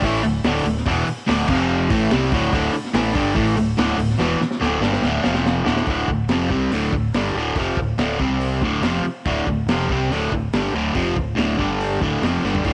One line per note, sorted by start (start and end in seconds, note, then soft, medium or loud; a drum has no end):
0.02 0.21 A1 loud
0.02 0.23 A2 medium
0.02 0.24 E3 medium
0.02 0.24 A3 loud
0.02 kick loud
0.02 open hi-hat medium
0.24 0.43 D1 medium
0.24 0.40 D2 medium
0.24 0.40 A2 medium
0.24 open hi-hat medium
0.44 0.63 D1 medium
0.44 0.64 D2 loud
0.44 0.65 A2 loud
0.44 0.66 D3 loud
0.44 snare loud
0.44 open hi-hat medium
0.64 0.84 D1 medium
0.64 0.82 D2 medium
0.64 0.82 A2 medium
0.64 open hi-hat medium
0.77 snare soft
0.86 1.05 E1 loud
0.86 1.06 E2 loud
0.86 1.07 B2 loud
0.86 1.07 E3 loud
0.86 kick loud
0.86 open hi-hat medium
1.07 muted fingered electric bass stroke soft
1.07 muted overdriven electric guitar stroke medium
1.07 open hi-hat medium
1.27 1.47 D1 loud
1.27 1.47 D2 loud
1.27 1.48 A2 loud
1.27 1.48 D3 loud
1.27 snare loud
1.27 open hi-hat medium
1.48 1.87 F1 loud
1.48 1.89 F2 medium
1.48 1.90 C3 medium
1.48 1.91 F3 loud
1.48 kick loud
1.48 crash loud
1.90 2.09 A1 loud
1.90 2.10 A2 loud
1.90 2.11 E3 loud
1.90 2.11 A3 loud
1.90 kick loud
1.90 open hi-hat medium
2.11 2.31 C2 loud
2.11 2.31 C3 medium
2.11 2.32 G3 loud
2.11 2.32 C4 loud
2.11 snare loud
2.11 open hi-hat medium
2.31 2.51 D1 loud
2.31 2.51 D2 medium
2.31 2.53 A2 loud
2.31 2.53 D3 medium
2.31 kick loud
2.31 open hi-hat medium
2.52 2.72 D1 medium
2.52 2.73 D2 medium
2.52 2.73 A2 loud
2.52 2.74 D3 loud
2.52 kick loud
2.52 open hi-hat medium
2.73 muted fingered electric bass stroke soft
2.73 muted overdriven electric guitar stroke medium
2.73 open hi-hat medium
2.85 snare soft
2.94 3.13 A1 loud
2.94 3.14 A2 loud
2.94 3.15 E3 loud
2.94 3.15 A3 loud
2.94 snare loud
2.94 open hi-hat medium
3.14 3.35 G1 loud
3.14 3.35 G2 medium
3.14 3.35 D3 medium
3.14 3.36 G3 loud
3.14 kick loud
3.14 open hi-hat medium
3.35 3.55 A1 loud
3.35 3.56 A2 loud
3.35 3.56 E3 loud
3.35 3.57 A3 loud
3.35 kick loud
3.35 open hi-hat medium
3.57 3.77 D1 medium
3.57 3.74 D2 medium
3.57 3.74 A2 medium
3.57 open hi-hat medium
3.78 3.97 D1 medium
3.78 3.97 D2 loud
3.78 3.98 A2 loud
3.78 3.99 D3 loud
3.78 snare loud
3.78 open hi-hat medium
3.97 4.17 D1 medium
3.97 4.15 D2 medium
3.97 4.16 A2 medium
3.97 open hi-hat medium
4.10 snare soft
4.18 4.38 E1 medium
4.18 4.39 E2 medium
4.18 4.40 B2 loud
4.18 4.41 E3 loud
4.18 snare medium
4.40 muted fingered electric bass stroke soft
4.40 muted overdriven electric guitar stroke medium
4.40 snare medium
4.51 snare medium
4.60 4.80 D1 loud
4.60 4.81 D2 medium
4.60 4.82 A2 loud
4.60 4.81 D3 loud
4.60 snare medium
4.81 5.01 G1 loud
4.81 5.03 G2 loud
4.81 5.03 D3 medium
4.81 5.03 G3 loud
4.81 snare medium
4.93 snare medium
5.02 5.22 D1 loud
5.02 5.23 D2 loud
5.02 5.24 A2 medium
5.02 5.25 D3 loud
5.02 snare medium
5.23 5.63 F1 medium
5.23 5.64 F2 loud
5.23 5.65 C3 loud
5.23 5.66 F3 loud
5.23 snare loud
5.34 snare medium
5.46 snare loud
5.65 5.86 D1 medium
5.65 5.86 D2 medium
5.65 5.87 A2 medium
5.65 5.87 D3 medium
5.65 snare loud
5.77 snare medium
5.86 6.07 D1 medium
5.86 6.08 D2 medium
5.86 6.09 A2 medium
5.86 kick loud
5.86 open hi-hat medium
5.90 6.09 D3 medium
6.07 6.27 D1 medium
6.07 6.26 D2 medium
6.07 6.26 A2 medium
6.07 kick medium
6.27 6.48 F1 medium
6.27 6.49 F2 loud
6.27 6.48 C3 loud
6.27 snare loud
6.27 open hi-hat medium
6.32 6.51 F3 loud
6.50 6.68 C2 loud
6.50 6.71 C3 medium
6.50 6.71 G3 medium
6.50 6.72 C4 loud
6.50 kick medium
6.69 6.90 D1 medium
6.69 6.92 D2 medium
6.69 6.92 A2 medium
6.69 open hi-hat medium
6.75 6.94 D3 medium
6.92 7.12 D1 medium
6.92 7.10 D2 medium
6.92 7.10 A2 medium
6.92 kick medium
7.12 7.33 G1 medium
7.12 7.35 G2 medium
7.12 7.35 D3 medium
7.12 snare loud
7.12 open hi-hat medium
7.17 7.36 G3 loud
7.35 7.55 D1 loud
7.35 7.56 D2 medium
7.35 7.56 A2 medium
7.35 7.57 D3 loud
7.56 7.76 F1 medium
7.56 7.77 F2 medium
7.56 7.78 C3 loud
7.56 7.78 F3 loud
7.56 kick loud
7.56 open hi-hat medium
7.77 7.97 D1 medium
7.77 7.95 D2 medium
7.77 7.95 A2 medium
7.77 kick medium
7.97 8.18 D1 medium
7.97 8.19 D2 medium
7.97 8.20 A2 loud
7.97 8.20 D3 loud
7.97 snare loud
7.97 open hi-hat medium
8.19 8.59 C2 medium
8.19 8.61 C3 medium
8.19 8.62 G3 medium
8.19 8.62 C4 medium
8.19 kick loud
8.41 open hi-hat medium
8.62 8.81 D1 medium
8.62 8.82 D2 medium
8.62 8.83 A2 medium
8.62 8.84 D3 loud
8.62 kick medium
8.81 9.02 F1 medium
8.81 9.04 F2 loud
8.81 9.04 C3 medium
8.81 9.04 F3 loud
8.81 snare loud
8.81 open hi-hat medium
9.04 muted fingered electric bass stroke soft
9.04 muted overdriven electric guitar stroke medium
9.25 9.45 D1 medium
9.25 9.46 D2 medium
9.25 9.46 A2 loud
9.25 9.47 D3 loud
9.25 kick loud
9.25 open hi-hat soft
9.47 9.66 D1 medium
9.47 9.64 D2 medium
9.47 9.64 A2 medium
9.47 kick medium
9.66 9.87 F1 loud
9.66 9.89 F2 medium
9.66 9.89 C3 loud
9.66 snare loud
9.66 open hi-hat medium
9.71 9.90 F3 loud
9.89 10.08 C2 loud
9.89 10.10 C3 medium
9.89 10.11 G3 medium
9.89 10.11 C4 loud
9.89 kick medium
10.09 10.29 D1 medium
10.09 10.31 D2 medium
10.09 10.32 A2 medium
10.09 10.32 D3 medium
10.09 open hi-hat medium
10.31 10.51 D1 medium
10.31 10.49 D2 medium
10.31 10.50 A2 medium
10.31 kick medium
10.52 10.72 G1 medium
10.52 10.73 G2 medium
10.52 10.74 D3 medium
10.52 10.75 G3 loud
10.52 snare loud
10.52 open hi-hat medium
10.74 10.93 D1 loud
10.74 10.94 D2 medium
10.74 10.95 A2 loud
10.74 10.95 D3 loud
10.94 11.15 F1 medium
10.94 11.15 F2 medium
10.94 11.16 C3 medium
10.94 11.16 F3 loud
10.94 kick loud
10.94 open hi-hat medium
11.16 11.36 D1 medium
11.16 11.33 D2 medium
11.16 11.33 A2 medium
11.16 kick medium
11.35 11.57 D1 loud
11.35 11.57 D2 medium
11.35 11.58 A2 medium
11.35 11.57 D3 loud
11.35 snare loud
11.35 open hi-hat medium
11.58 11.98 G1 loud
11.58 12.00 G2 medium
11.58 12.00 D3 medium
11.58 12.01 G3 medium
11.58 kick medium
11.80 open hi-hat medium
12.01 12.21 D1 medium
12.01 12.22 D2 medium
12.01 12.22 A2 loud
12.01 12.22 D3 loud
12.01 kick medium
12.22 12.42 F1 medium
12.22 12.43 F2 medium
12.22 12.44 C3 medium
12.22 12.44 F3 medium
12.22 snare loud
12.22 open hi-hat medium
12.43 12.63 G1 medium
12.43 12.63 G2 loud
12.43 12.65 D3 medium
12.43 12.65 G3 medium
12.43 snare medium
12.55 floor tom medium
12.64 12.73 D1 medium
12.64 12.73 D2 medium
12.64 12.73 A2 loud
12.64 12.73 D3 medium
12.64 kick loud
12.64 open hi-hat medium